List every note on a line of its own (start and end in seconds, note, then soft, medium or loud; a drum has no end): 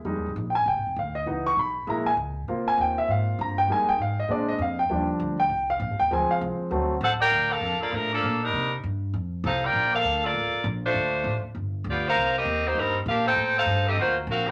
0.05 0.15 F2 medium
0.05 0.27 G3 soft
0.05 0.28 G#3 soft
0.05 0.28 D#4 medium
0.15 0.26 D#2 medium
0.26 0.35 C2 medium
0.36 0.65 A#1 loud
0.50 0.52 G5 medium
0.55 0.66 G#5 medium
0.66 0.77 C2 medium
0.66 0.95 G5 medium
0.76 0.86 G#1 medium
0.87 0.96 F1 medium
0.96 1.26 D2 medium
0.96 1.16 F5 medium
1.15 1.26 D#5 medium
1.26 1.56 C#2 medium
1.26 1.48 E3 soft
1.26 1.49 B3 soft
1.26 1.49 D#4 medium
1.47 1.57 C#6 loud
1.57 1.86 B1 medium
1.57 1.86 B5 medium
1.87 2.17 A#1 medium
1.87 2.09 G#3 medium
1.87 2.10 A#3 soft
1.87 2.10 E4 medium
1.87 2.06 A#5 medium
2.06 2.13 G#5 medium
2.17 2.46 C#2 loud
2.48 2.65 C2 medium
2.48 3.65 A#3 soft
2.48 3.65 C4 soft
2.48 3.65 F4 medium
2.66 2.78 G#5 medium
2.66 muted upright bass stroke soft
2.77 3.07 D#2 loud
2.77 2.97 G5 medium
2.98 3.09 E5 medium
3.08 3.37 G#2 medium
3.08 3.38 F5 medium
3.39 3.68 G2 loud
3.39 3.58 A#5 medium
3.58 3.69 G5 medium
3.68 3.98 F2 medium
3.68 3.91 G3 medium
3.68 3.91 G#3 soft
3.68 3.92 A#3 soft
3.68 3.92 D#4 medium
3.68 3.88 G#5 medium
3.89 3.99 G5 medium
3.98 4.28 G#2 medium
3.98 4.18 F5 medium
4.20 4.30 D#5 medium
4.28 4.58 A#2 medium
4.28 4.51 G#3 medium
4.28 4.51 C4 medium
4.28 4.52 D4 medium
4.28 4.48 D5 medium
4.49 4.59 D#5 medium
4.59 4.88 F2 loud
4.59 4.79 F5 medium
4.79 5.07 G5 medium
4.89 5.19 D#2 medium
4.89 5.36 F3 soft
4.89 5.36 G3 soft
4.89 5.37 D4 medium
5.19 5.49 D2 loud
5.40 5.67 G5 medium
5.49 5.79 C2 medium
5.70 5.97 F5 medium
5.80 5.90 A#1 loud
5.90 6.00 G1 medium
6.00 6.10 D#1 medium
6.00 6.10 G5 medium
6.11 6.28 D2 medium
6.11 6.68 F3 medium
6.11 6.68 G#3 soft
6.11 6.69 C4 medium
6.11 6.30 G#5 medium
6.30 6.37 F5 medium
6.30 muted upright bass stroke soft
6.41 6.58 C2 loud
6.60 muted upright bass stroke soft
6.71 7.00 D2 medium
6.71 6.93 F#3 medium
6.71 6.93 A3 soft
6.71 6.93 C4 medium
7.01 7.30 A1 loud
7.01 7.11 D4 medium
7.01 7.11 A4 medium
7.01 7.11 C5 medium
7.01 7.11 F#5 loud
7.21 7.49 F4 loud
7.21 7.48 A#4 loud
7.21 7.49 D5 loud
7.21 7.48 G5 loud
7.32 7.60 D2 medium
7.51 7.81 D4 medium
7.51 7.80 A4 medium
7.51 7.81 A#4 medium
7.51 7.81 F5 loud
7.61 7.78 F2 medium
7.81 7.91 A#3 medium
7.81 7.91 F4 medium
7.81 7.92 A4 medium
7.81 7.92 D5 medium
7.81 muted upright bass stroke soft
7.92 8.21 A2 medium
7.92 8.11 F3 medium
7.92 8.11 A3 medium
7.92 8.11 D4 medium
7.92 8.11 A#4 loud
8.12 8.40 F3 medium
8.12 8.40 A#3 medium
8.12 8.40 D4 medium
8.12 8.40 A4 loud
8.23 8.52 A#2 loud
8.43 8.72 G3 medium
8.43 8.72 D4 medium
8.43 8.72 D#4 medium
8.43 8.72 A#4 medium
8.53 8.82 C3 medium
8.84 9.12 G2 loud
9.14 9.42 F2 medium
9.44 9.73 C2 loud
9.44 9.61 D#4 loud
9.44 9.61 A4 medium
9.44 9.62 C5 medium
9.44 9.62 F5 loud
9.64 9.93 F4 loud
9.64 9.93 A#4 loud
9.64 9.93 D5 loud
9.64 9.93 G5 loud
9.73 10.03 A#1 medium
9.94 10.21 D4 loud
9.94 10.21 A4 medium
9.94 10.21 A#4 medium
9.94 10.21 F5 loud
10.04 10.33 D2 loud
10.24 10.65 A#3 medium
10.24 10.65 F4 medium
10.24 10.65 A4 medium
10.24 10.65 D5 loud
10.34 10.51 A1 medium
10.52 muted upright bass stroke soft
10.64 10.93 A#1 loud
10.85 11.40 A3 medium
10.85 11.40 D4 medium
10.85 11.41 F4 medium
10.85 11.40 C5 loud
10.94 11.24 D2 medium
11.24 11.42 A1 loud
11.43 muted upright bass stroke soft
11.55 11.84 G1 medium
11.84 12.14 D2 loud
11.90 12.05 B3 medium
11.90 12.05 F4 medium
11.90 12.05 G4 medium
11.90 12.05 D5 medium
12.08 12.34 D#4 loud
12.08 12.34 A#4 loud
12.08 12.34 C5 medium
12.08 12.34 F5 loud
12.15 12.45 C2 medium
12.38 12.66 C4 medium
12.38 12.66 G4 medium
12.38 12.66 A#4 loud
12.38 12.66 D#5 loud
12.45 12.74 D#2 loud
12.67 12.77 A#3 medium
12.67 12.77 D#4 medium
12.67 12.77 G4 medium
12.67 12.77 C5 loud
12.75 13.05 G2 medium
12.75 12.96 G3 medium
12.75 12.96 C4 medium
12.75 12.96 D#4 medium
12.75 12.96 A#4 medium
13.06 13.35 A#2 loud
13.06 13.25 D4 medium
13.06 13.25 G4 medium
13.06 13.25 A#4 medium
13.06 13.25 F5 loud
13.27 13.54 D#4 loud
13.27 13.54 A4 loud
13.27 13.54 C5 loud
13.27 13.54 G5 loud
13.36 13.65 A2 medium
13.58 13.85 D#4 medium
13.58 13.85 A4 loud
13.58 13.84 C5 medium
13.58 13.85 F5 loud
13.66 13.95 G2 loud
13.88 13.98 C4 medium
13.88 13.98 G4 medium
13.88 13.98 A4 medium
13.88 13.98 D#5 loud
13.96 14.26 D2 medium
13.96 14.16 A#3 medium
13.96 14.16 F4 medium
13.96 14.16 F#4 medium
14.00 14.16 C5 loud
14.27 14.51 A#1 loud
14.27 14.46 C4 medium
14.27 14.46 F#4 medium
14.27 14.46 A#4 medium
14.27 14.46 F5 loud
14.48 14.51 A#4 loud
14.48 14.51 D5 loud